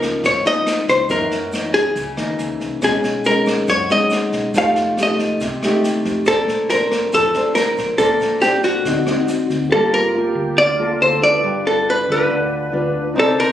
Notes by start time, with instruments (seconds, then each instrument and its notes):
Already playing: fingered electric bass C#2, nylon-string guitar C#3 F3 A#3 D#4, hollow-body jazz guitar A#4
0.02 kick, cross-stick, snare, shaker
0.23 fingered electric bass G#1, nylon-string guitar G#2, hollow-body jazz guitar C#5, kick, snare, shaker
0.45 nylon-string guitar F3 A#3 D#4, hollow-body jazz guitar D#5, snare, shaker
0.67 cross-stick, snare, shaker
0.88 fingered electric bass C#2, hollow-body jazz guitar C5, kick, snare, shaker
1.09 nylon-string guitar F#2 E3 A#3 D#4, fingered electric bass F#2, hollow-body jazz guitar A#4, kick, snare, shaker
1.31 fingered electric bass F#2, snare, shaker
1.52 nylon-string guitar E3 A#3 D#4, cross-stick, snare, shaker
1.74 hollow-body jazz guitar G#4, kick, snare, shaker
1.96 fingered electric bass C#2, nylon-string guitar C#3, kick, snare, shaker
2.17 fingered electric bass D#2, nylon-string guitar E3 A#3 D#4, cross-stick, snare, shaker
2.39 fingered electric bass C#2, snare, shaker
2.60 fingered electric bass C2, kick, snare, shaker
2.82 fingered electric bass B1, nylon-string guitar B2 G#3 C#4 D#4, hollow-body jazz guitar G#4, kick, cross-stick, snare, shaker
3.03 fingered electric bass B1, snare, shaker
3.24 nylon-string guitar G#3 C#4 D#4, hollow-body jazz guitar A#4, snare, shaker
3.46 kick, cross-stick, snare, shaker
3.68 fingered electric bass F#2, nylon-string guitar F#3, hollow-body jazz guitar C#5, kick, snare, shaker
3.89 nylon-string guitar G#3 C#4 D#4, hollow-body jazz guitar D#5, snare, shaker
4.10 cross-stick, snare, shaker
4.32 fingered electric bass B1, kick, snare, shaker
4.54 fingered electric bass F1, nylon-string guitar F3 A3 D#4 G4, kick, snare, shaker
4.58 hollow-body jazz guitar F5
4.76 fingered electric bass F1, snare, shaker
4.97 nylon-string guitar A3 D#4 G4, cross-stick, snare, shaker
5.03 hollow-body jazz guitar D#5
5.19 kick, snare, shaker
5.40 fingered electric bass C2, nylon-string guitar C3, kick, snare, shaker
5.62 nylon-string guitar A3 D#4 G4, cross-stick, snare, shaker
5.84 snare, shaker
6.05 fingered electric bass F2, kick, snare, shaker
6.26 fingered electric bass A#1, nylon-string guitar A#3 D4 A4 C5, hollow-body jazz guitar A4, kick, cross-stick, snare, shaker
6.48 fingered electric bass A#1, snare, shaker
6.69 nylon-string guitar D4 C5, hollow-body jazz guitar A#4, snare, shaker
6.91 kick, cross-stick, snare, shaker
7.12 fingered electric bass F2, nylon-string guitar F3, hollow-body jazz guitar A4, kick, snare, shaker
7.34 nylon-string guitar D4 C5, snare, shaker
7.55 hollow-body jazz guitar A#4, cross-stick, snare, shaker
7.77 fingered electric bass A#1, kick, snare, shaker
7.98 fingered electric bass A#1, nylon-string guitar A#3 D4 A4 C5, hollow-body jazz guitar A4, kick, snare, shaker
8.20 fingered electric bass A#1, snare, shaker
8.41 nylon-string guitar D4 A4 C5, hollow-body jazz guitar G4, cross-stick, snare, shaker
8.63 hollow-body jazz guitar F#4, kick, snare, shaker
8.85 fingered electric bass D2, nylon-string guitar D3 C4 D#4 F#4, kick, snare, shaker
9.07 nylon-string guitar C4 D#4 F#4, cross-stick, snare, shaker
9.28 snare, shaker
9.50 fingered electric bass D2, kick, snare, shaker
9.70 fingered electric bass G1, nylon-string guitar G3 A#3 F4 A4, flute section F4, grand piano G4 F5, hollow-body jazz guitar A4
9.75 grand piano A5
9.94 hollow-body jazz guitar A#4
10.15 nylon-string guitar A#3 F4, flute section G4
10.35 fingered electric bass D2
10.56 fingered electric bass D2, nylon-string guitar D3, flute section F4, hollow-body jazz guitar D5
10.79 nylon-string guitar A#3 F4 A4
11.00 fingered electric bass D2, flute section A4, hollow-body jazz guitar C5
11.22 nylon-string guitar D4 F4 B4, hollow-body jazz guitar D5
11.40 fingered electric bass G1, nylon-string guitar G3, grand piano F4 B4 D5
11.45 flute section B4, grand piano G5
11.67 hollow-body jazz guitar A4
11.90 hollow-body jazz guitar B4
12.08 fingered electric bass D2, nylon-string guitar D4 F4 B4, hollow-body jazz guitar B4
12.30 fingered electric bass D2, nylon-string guitar D3
12.72 fingered electric bass D2, nylon-string guitar D4 F4 B4
13.14 fingered electric bass C2, nylon-string guitar C4 D#4 A#4 D5, grand piano D#4 C5 D5, flute section C5
13.19 hollow-body jazz guitar A4, grand piano A#5
13.40 hollow-body jazz guitar A#4